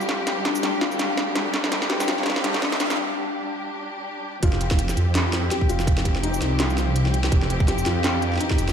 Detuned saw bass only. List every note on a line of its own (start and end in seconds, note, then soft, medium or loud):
0.00 0.62 G1 medium
0.63 1.52 D2 medium
1.54 2.07 G1 loud
2.08 2.61 G2 medium
2.80 2.98 G1 loud
4.43 4.96 F1 loud
4.97 5.50 F2 loud
5.69 6.40 F1 medium
6.42 7.31 C2 loud
7.32 7.85 F1 loud
7.86 8.39 F2 loud
8.59 8.73 F1 medium